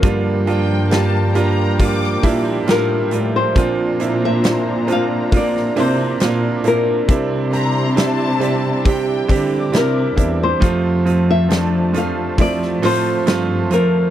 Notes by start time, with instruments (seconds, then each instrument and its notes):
Already playing: analog synth pad F3, nylon-string guitar A#4
0.02 upright piano G2 D3 G3 A#3 D4 F4, cello section G2, analog synth pad A#4 G5, kick, hi-hat pedal, open hi-hat
0.46 upright piano G3 A#3 D4 F4, violin section G5, hi-hat pedal, open hi-hat
0.90 upright piano G3 A#3 D4 F4, violin section A5, snare, hi-hat pedal, open hi-hat
1.35 upright piano G3 A#3 D4 F4, violin section A#5, hi-hat pedal, open hi-hat
1.79 upright piano G3 A#3 D4 F4, violin section D6, kick, hi-hat pedal, open hi-hat
2.04 snare
2.23 cello section A#2, upright piano G3 A#3 D4 E4, kick, hi-hat pedal, open hi-hat
2.67 cello section A2, upright piano G3 D4 F4 A#4, snare, hi-hat pedal, open hi-hat
2.71 nylon-string guitar A#4
3.11 cello section A2, upright piano G3 D4 F4 A#4, hi-hat pedal, open hi-hat
3.36 nylon-string guitar C5
3.55 upright piano A#2 F3 A#3 C4 D4 F4, cello section A#2, analog synth pad D4 C5 A#5, kick, hi-hat pedal, open hi-hat
4.00 upright piano A#3 C4 D4 E4, hi-hat pedal, open hi-hat
4.25 nylon-string guitar E5
4.43 upright piano A#3 C4 D4 E4, snare, hi-hat pedal, open hi-hat
4.87 upright piano A#3 C4 D4 F4, hi-hat pedal, open hi-hat
4.92 nylon-string guitar F5
5.32 upright piano A#3 C4 D4 F4, analog synth pad D5, kick, hi-hat pedal, open hi-hat
5.37 nylon-string guitar D5
5.57 snare
5.76 cello section C3, upright piano A#3 C4 D4 E4, nylon-string guitar C5, hi-hat pedal, open hi-hat
6.20 cello section A#2, upright piano A#3 C4 D4 F4, snare, hi-hat pedal, open hi-hat
6.64 cello section A#2, upright piano A#3 C4 D4 E4, nylon-string guitar A#4, hi-hat pedal, open hi-hat
7.08 cello section C3, upright piano C3 G3 C4 D4 E4, analog synth pad E4 C6, kick, hi-hat pedal, open hi-hat
7.52 upright piano G3 C4 D4 G4, violin section A#5, hi-hat pedal, open hi-hat
7.96 upright piano G3 C4 D4 E4, violin section A5, snare, hi-hat pedal, open hi-hat
8.40 upright piano G3 C4 D4 G4, hi-hat pedal, open hi-hat
8.85 upright piano G3 C4 D4 G4, violin section G5, analog synth pad D6, kick, hi-hat pedal, open hi-hat
9.28 cello section D3, upright piano G3 C4 D4 G4, kick, hi-hat pedal, open hi-hat
9.72 cello section C3, upright piano G3 C4 D4 E4, snare, hi-hat pedal, open hi-hat
9.77 nylon-string guitar A#4
10.16 cello section E2, upright piano G3 C4 D4 E4, kick, hi-hat pedal, open hi-hat
10.43 nylon-string guitar C5
10.60 cello section F2, upright piano C3 F3 A3 C4 F4, analog synth pad F3 C5 A5, kick, hi-hat pedal, open hi-hat
11.05 upright piano F3 A3 C4 F4, hi-hat pedal, open hi-hat
11.31 nylon-string guitar E5
11.49 upright piano F3 A3 C4 D4, snare, hi-hat pedal, open hi-hat
11.93 upright piano F3 A3 C4 F4, hi-hat pedal, open hi-hat
11.98 nylon-string guitar F5
12.38 upright piano F3 A3 C4 E4, nylon-string guitar D5, kick, hi-hat pedal, open hi-hat
12.62 snare
12.82 cello section A2, upright piano F3 A3 C4 F4, nylon-string guitar C5, hi-hat pedal, open hi-hat
13.26 cello section G2, upright piano F3 A3 C4 F4, snare, hi-hat pedal, open hi-hat
13.69 cello section F2, upright piano F3 C4 F4, hi-hat pedal, open hi-hat
13.74 nylon-string guitar A#4